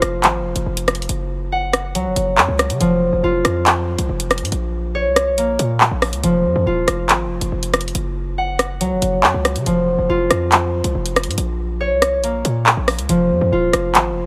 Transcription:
0.00 0.25 F1 loud
0.00 1.14 F3 medium
0.00 1.74 A#3 medium
0.00 1.58 F4 medium
0.00 cross-stick loud
0.00 closed hi-hat medium
0.24 0.41 G#1 loud
0.24 clap loud
0.24 closed hi-hat medium
0.40 0.55 F1 loud
0.56 0.66 F1 loud
0.56 closed hi-hat medium
0.66 1.08 F1 loud
0.77 closed hi-hat loud
0.88 cross-stick loud
0.88 closed hi-hat medium
0.95 closed hi-hat medium
1.02 closed hi-hat medium
1.09 1.96 F#1 loud
1.09 closed hi-hat medium
1.52 2.87 F#5 medium
1.73 cross-stick loud
1.73 closed hi-hat medium
1.95 2.07 C#2 loud
1.95 2.86 F#3 medium
1.95 closed hi-hat medium
2.06 2.16 F#1 loud
2.16 2.39 F#1 loud
2.16 closed hi-hat medium
2.38 2.48 F#2 loud
2.38 clap loud
2.48 2.71 C#2 loud
2.59 cross-stick loud
2.59 closed hi-hat medium
2.70 2.80 C#3 loud
2.70 closed hi-hat medium
2.81 3.11 F1 loud
2.81 4.57 F3 medium
2.81 closed hi-hat medium
3.13 3.23 F1 loud
3.23 3.44 F1 loud
3.23 5.76 F4 medium
3.45 3.96 F2 loud
3.45 cross-stick loud
3.45 closed hi-hat medium
3.66 clap loud
3.66 closed hi-hat medium
3.98 4.09 C2 loud
3.98 closed hi-hat medium
4.09 4.43 F1 loud
4.20 closed hi-hat loud
4.31 cross-stick loud
4.31 closed hi-hat medium
4.38 4.52 G#2 loud
4.38 closed hi-hat medium
4.45 closed hi-hat medium
4.52 5.07 A#1 loud
4.52 closed hi-hat medium
4.95 6.86 C#5 loud
5.06 5.34 C2 loud
5.16 cross-stick loud
5.16 closed hi-hat medium
5.32 5.58 A#1 loud
5.38 8.59 A#3 loud
5.38 closed hi-hat medium
5.59 5.90 A#2 loud
5.59 closed hi-hat medium
5.81 clap loud
5.91 6.14 A#1 loud
6.02 cross-stick loud
6.02 open hi-hat medium
6.13 6.23 C#2 loud
6.13 closed hi-hat medium
6.24 6.46 F1 loud
6.24 8.00 F3 medium
6.24 closed hi-hat medium
6.45 6.55 F2 loud
6.56 6.66 F2 loud
6.66 6.87 D#1 loud
6.66 8.44 F4 medium
6.88 7.11 F1 loud
6.88 cross-stick loud
6.88 closed hi-hat medium
7.09 7.27 G#1 loud
7.09 clap loud
7.09 closed hi-hat medium
7.25 7.41 F1 loud
7.41 7.52 F1 loud
7.41 closed hi-hat medium
7.52 7.93 F1 loud
7.63 closed hi-hat medium
7.74 cross-stick loud
7.74 closed hi-hat medium
7.81 closed hi-hat medium
7.88 closed hi-hat medium
7.95 8.82 F#1 loud
7.95 closed hi-hat medium
8.38 9.72 F#5 loud
8.59 cross-stick loud
8.59 closed hi-hat medium
8.80 8.93 C#2 loud
8.80 9.71 F#3 medium
8.80 closed hi-hat medium
8.91 9.02 F#1 loud
9.02 9.25 F#1 loud
9.02 closed hi-hat medium
9.23 9.34 F#2 loud
9.23 clap loud
9.34 9.57 C#2 loud
9.45 cross-stick loud
9.45 closed hi-hat medium
9.56 9.66 C#3 loud
9.56 closed hi-hat medium
9.66 9.97 F1 loud
9.66 11.43 F3 medium
9.66 closed hi-hat medium
9.99 10.09 F1 loud
10.09 10.30 F1 loud
10.09 12.62 F4 loud
10.31 10.82 F2 loud
10.31 cross-stick loud
10.31 closed hi-hat medium
10.52 clap loud
10.52 closed hi-hat medium
10.84 10.95 C2 loud
10.84 closed hi-hat medium
10.95 11.29 F1 loud
11.06 closed hi-hat medium
11.16 cross-stick loud
11.16 closed hi-hat medium
11.23 11.37 G#2 loud
11.23 closed hi-hat medium
11.31 closed hi-hat medium
11.38 11.93 A#1 loud
11.38 closed hi-hat medium
11.81 13.72 C#5 loud
11.91 12.20 C2 loud
12.02 cross-stick loud
12.02 closed hi-hat medium
12.18 12.44 A#1 loud
12.23 14.26 A#3 medium
12.23 closed hi-hat medium
12.45 12.76 A#2 loud
12.45 closed hi-hat medium
12.66 clap loud
12.77 13.00 A#1 loud
12.88 cross-stick loud
12.88 open hi-hat medium
12.99 13.09 C#2 loud
12.99 closed hi-hat medium
13.09 13.32 F1 loud
13.09 14.26 F3 medium
13.09 closed hi-hat medium
13.31 13.41 F2 loud
13.41 13.52 F2 loud
13.52 13.73 D#1 loud
13.52 14.26 F4 medium
13.73 13.96 F1 loud
13.73 cross-stick loud
13.73 closed hi-hat medium
13.95 14.13 G#1 loud
13.95 clap loud
13.95 closed hi-hat medium
14.11 14.26 F1 loud

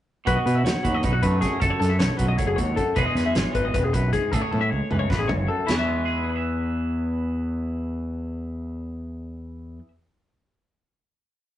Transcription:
0.25 0.36 B1 medium
0.25 1.42 B2 medium
0.25 1.59 F#4 medium
0.25 0.37 B4 medium
0.25 kick loud
0.25 closed hi-hat medium
0.36 0.46 D#5 medium
0.46 0.63 B2 medium
0.46 0.56 B4 medium
0.46 closed hi-hat medium
0.55 0.64 E5 medium
0.64 0.73 D#2 medium
0.64 0.84 C#5 medium
0.64 snare loud
0.64 closed hi-hat medium
0.83 1.02 D#2 medium
0.83 1.59 F#3 medium
0.83 0.95 B4 medium
0.83 kick medium
0.83 closed hi-hat medium
0.95 1.03 D#5 medium
1.03 1.21 B1 medium
1.03 1.60 D#4 medium
1.03 1.13 B4 medium
1.03 kick medium
1.03 closed hi-hat medium
1.13 1.23 F#4 medium
1.23 1.40 F#2 medium
1.23 1.60 A3 medium
1.23 1.41 B4 medium
1.23 kick medium
1.23 closed hi-hat medium
1.41 1.60 F#2 medium
1.41 1.60 G#4 medium
1.41 kick medium
1.41 snare soft
1.41 closed hi-hat medium
1.60 1.70 F#1 medium
1.60 2.37 F#2 medium
1.60 1.70 A4 medium
1.60 2.94 A4 medium
1.60 kick medium
1.60 closed hi-hat medium
1.70 1.81 C#5 medium
1.80 1.98 F#2 medium
1.80 1.90 A4 medium
1.80 snare soft
1.80 closed hi-hat medium
1.90 1.99 E5 medium
1.99 2.09 B1 medium
1.99 2.17 C#5 medium
1.99 snare loud
1.99 closed hi-hat medium
2.17 2.37 B1 medium
2.17 2.94 F#3 medium
2.17 2.28 B4 medium
2.17 kick medium
2.17 closed hi-hat medium
2.28 2.37 D#5 medium
2.37 2.56 F#1 medium
2.37 2.56 A2 medium
2.37 2.48 C#5 medium
2.37 kick medium
2.37 closed hi-hat medium
2.47 2.57 G#4 medium
2.56 2.76 D#2 medium
2.56 2.75 G#2 medium
2.56 2.77 C#5 medium
2.56 kick medium
2.56 closed hi-hat medium
2.75 2.95 F#2 medium
2.75 2.96 A4 medium
2.75 kick medium
2.75 closed hi-hat medium
2.95 3.05 E1 medium
2.95 3.72 E2 medium
2.95 3.51 E3 medium
2.95 5.68 G#3 medium
2.95 4.30 D#4 soft
2.95 4.34 G#4 medium
2.95 3.06 B4 medium
2.95 kick loud
2.95 closed hi-hat medium
3.06 3.16 D#5 medium
3.15 3.33 E2 medium
3.15 3.26 B4 medium
3.15 snare soft
3.15 closed hi-hat medium
3.26 3.36 E5 medium
3.35 3.44 G#1 medium
3.35 3.55 C#5 medium
3.35 snare loud
3.35 closed hi-hat medium
3.52 3.72 G#1 medium
3.52 4.89 E3 medium
3.52 3.65 B4 medium
3.52 kick medium
3.52 closed hi-hat medium
3.65 3.74 D#5 medium
3.73 3.92 E1 medium
3.73 3.93 E2 medium
3.73 3.84 B4 medium
3.73 kick medium
3.73 closed hi-hat medium
3.84 3.93 G#4 medium
3.93 4.11 B1 medium
3.93 4.12 F#2 medium
3.93 4.12 B4 medium
3.93 kick medium
3.93 closed hi-hat medium
4.13 4.32 G#2 medium
4.13 4.32 G#4 medium
4.13 kick medium
4.13 closed hi-hat medium
4.32 4.41 A1 medium
4.32 5.09 A2 medium
4.32 5.66 G#4 medium
4.32 4.42 A4 medium
4.32 kick loud
4.32 closed hi-hat medium
4.42 4.51 C#5 medium
4.51 4.70 A2 medium
4.51 4.61 A4 medium
4.51 high tom soft
4.61 4.70 E5 medium
4.70 4.80 C#2 medium
4.70 4.90 C#5 medium
4.90 5.08 C#2 medium
4.90 5.74 E3 medium
4.90 4.99 B4 medium
4.90 mid tom medium
4.99 5.10 C#5 medium
5.10 5.27 A1 medium
5.10 5.29 A2 medium
5.10 5.19 B4 medium
5.10 kick medium
5.10 snare medium
5.19 5.29 G#4 medium
5.28 5.48 F#1 medium
5.28 5.47 G#2 medium
5.28 5.48 C#5 medium
5.28 floor tom medium
5.48 5.65 F#2 medium
5.48 5.68 A4 medium
5.66 9.79 E2 medium
5.66 9.78 E2 medium
5.66 5.78 E4 medium
5.66 snare medium
5.66 splash medium
5.71 5.75 G#4 medium
5.75 9.88 E3 medium
5.75 9.88 B4 medium
5.79 9.88 E5 medium
5.85 6.24 G#3 medium
6.05 6.24 G#4 soft
6.24 9.87 G#4 medium
6.30 9.90 B4 medium
6.36 9.93 E5 medium

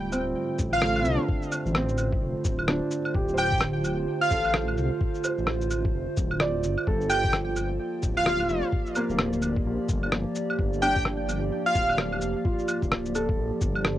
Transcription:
0.00 0.34 D1 medium
0.00 6.86 D3 medium
0.00 0.89 G3 medium
0.00 6.87 A3 medium
0.00 8.32 F4 medium
0.00 0.52 D5 medium
0.12 1.00 C4 medium
0.12 cabasa medium
0.12 claves soft
0.12 shaker medium
0.38 7.95 C5 loud
0.59 1.04 A1 loud
0.59 kick loud
0.59 cabasa medium
0.59 shaker medium
0.73 1.20 F5 loud
0.73 claves medium
0.82 2.05 A3 medium
0.82 cross-stick loud
0.96 claves medium
1.01 1.74 C4 medium
1.01 cabasa medium
1.01 shaker medium
1.05 1.18 C2 loud
1.15 2.33 D4 medium
1.29 kick loud
1.43 shaker soft
1.52 cabasa medium
1.52 claves medium
1.52 shaker medium
1.66 2.20 A1 medium
1.66 shaker soft
1.75 2.98 C4 medium
1.75 cross-stick loud
1.89 cabasa soft
1.98 cabasa medium
1.98 claves soft
1.98 shaker medium
2.12 kick loud
2.22 2.35 F1 medium
2.45 2.67 D1 medium
2.45 kick loud
2.45 cabasa medium
2.45 shaker medium
2.59 claves medium
2.68 2.81 D1 medium
2.68 3.91 D4 medium
2.68 cross-stick loud
2.91 cabasa medium
2.91 shaker medium
3.05 claves medium
3.14 4.06 D1 loud
3.14 4.38 G4 medium
3.14 kick loud
3.28 shaker soft
3.34 4.50 C5 medium
3.34 cabasa medium
3.34 claves medium
3.34 shaker medium
3.38 3.63 G5 loud
3.52 kick loud
3.52 shaker soft
3.61 cross-stick loud
3.84 cabasa medium
3.84 claves soft
3.84 shaker medium
4.21 4.54 F5 loud
4.31 4.76 A1 loud
4.31 5.54 A4 medium
4.31 kick loud
4.31 cabasa medium
4.31 shaker medium
4.45 claves medium
4.54 cross-stick loud
4.68 claves medium
4.77 4.90 C2 loud
4.77 cabasa medium
4.77 shaker medium
5.01 kick loud
5.15 shaker soft
5.24 6.47 C5 medium
5.24 cabasa medium
5.24 claves medium
5.24 shaker medium
5.38 5.93 A1 loud
5.38 shaker soft
5.47 cross-stick loud
5.61 cabasa soft
5.71 cabasa medium
5.71 claves soft
5.71 shaker medium
5.85 kick loud
5.94 6.07 F1 medium
6.17 6.66 D1 medium
6.17 kick loud
6.17 cabasa medium
6.17 shaker medium
6.31 claves medium
6.40 7.06 D5 medium
6.40 cross-stick loud
6.63 6.77 G1 loud
6.63 cabasa medium
6.63 shaker medium
6.78 claves medium
6.87 7.79 G1 loud
6.87 13.99 F3 medium
6.87 8.10 A4 medium
6.87 kick loud
7.01 shaker soft
7.10 7.34 G5 loud
7.10 cabasa medium
7.10 claves medium
7.10 shaker medium
7.15 13.99 A#3 medium
7.24 kick loud
7.24 shaker soft
7.33 cross-stick loud
7.56 cabasa medium
7.56 claves soft
7.56 shaker medium
7.91 13.99 G4 medium
8.03 8.48 D1 loud
8.03 kick loud
8.03 cabasa medium
8.03 shaker medium
8.17 8.64 F5 loud
8.17 claves medium
8.26 9.49 F4 medium
8.26 13.99 D5 medium
8.26 cross-stick loud
8.40 claves medium
8.49 8.62 F1 loud
8.49 cabasa medium
8.49 shaker medium
8.73 kick loud
8.86 shaker soft
8.95 10.19 A#3 medium
8.95 cabasa medium
8.95 claves medium
8.95 shaker medium
9.10 9.64 D1 loud
9.10 shaker soft
9.19 cross-stick loud
9.33 cabasa soft
9.42 cabasa medium
9.42 claves soft
9.42 shaker medium
9.56 kick medium
9.66 9.79 A#1 medium
9.89 10.11 G1 medium
9.89 kick loud
9.89 cabasa medium
9.89 shaker medium
10.03 claves medium
10.12 10.25 G1 medium
10.12 cross-stick loud
10.35 cabasa medium
10.35 shaker soft
10.50 claves medium
10.59 11.51 G1 medium
10.59 kick loud
10.73 shaker soft
10.82 12.05 D4 medium
10.82 11.07 G5 loud
10.82 cabasa medium
10.82 claves medium
10.82 shaker medium
10.96 kick loud
10.96 shaker soft
11.05 cross-stick loud
11.29 cabasa medium
11.29 claves soft
11.29 shaker medium
11.66 11.99 F5 loud
11.75 12.21 D1 loud
11.75 kick loud
11.75 cabasa medium
11.75 shaker medium
11.89 claves medium
11.98 cross-stick loud
12.12 claves medium
12.21 12.35 F1 loud
12.21 cabasa medium
12.21 shaker medium
12.45 13.68 F4 medium
12.45 kick loud
12.59 shaker soft
12.68 cabasa medium
12.68 claves medium
12.68 shaker medium
12.82 13.37 D1 loud
12.82 kick medium
12.82 shaker soft
12.92 cross-stick loud
13.06 cabasa soft
13.15 13.99 A4 medium
13.15 cabasa medium
13.15 claves soft
13.15 shaker medium
13.29 kick loud
13.38 13.51 A#1 medium
13.61 13.99 G1 medium
13.61 kick loud
13.61 cabasa medium
13.61 shaker medium
13.75 claves medium
13.85 cross-stick loud

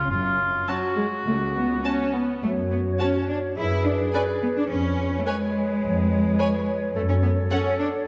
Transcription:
0.10 0.56 F#1 soft
0.10 0.59 F#2 medium
0.10 0.70 F4 medium
0.68 0.95 F#3 soft
0.68 0.76 C#4 soft
0.68 2.14 F#4 soft
0.68 0.77 A5 soft
0.97 1.05 G#3 soft
1.27 1.75 C#2 soft
1.27 1.35 A3 soft
1.56 1.84 B3 soft
1.84 1.92 C#4 soft
1.84 2.13 C#4 medium
1.84 1.93 A5 soft
2.14 2.43 B3 soft
2.42 2.90 F#2 soft
2.42 2.51 A3 medium
2.42 3.59 F#4 soft
2.42 3.53 C#5 soft
2.71 2.79 B3 medium
2.99 3.28 C#4 soft
2.99 3.08 F#4 soft
2.99 3.08 C#5 soft
2.99 3.07 A5 soft
3.29 3.37 D4 soft
3.57 4.04 F#2 soft
3.57 3.84 E4 medium
3.57 4.69 G#4 soft
3.57 4.70 B4 soft
3.85 4.13 D4 medium
4.13 4.22 C#4 medium
4.13 4.21 B4 soft
4.13 4.22 D5 soft
4.13 4.22 G#5 soft
4.42 4.47 B3 medium
4.57 4.70 D4 medium
4.69 5.17 F2 soft
4.69 5.18 C#4 medium
4.69 6.91 B4 soft
4.69 8.04 C#5 soft
5.19 5.26 A3 soft
5.26 6.95 G#3 medium
5.26 5.34 B4 soft
5.26 5.34 C#5 soft
5.26 5.35 G#5 soft
5.83 6.30 F2 soft
6.39 6.47 B4 soft
6.39 6.47 C#5 soft
6.39 6.48 G#5 soft
6.95 7.42 F#2 soft
6.95 7.01 A3 medium
6.95 8.07 A4 soft
7.09 7.15 C#4 medium
7.23 7.31 B3 medium
7.51 7.79 C#4 medium
7.51 7.59 A4 soft
7.51 7.59 C#5 soft
7.51 7.59 F#5 soft
7.79 7.87 D4 medium

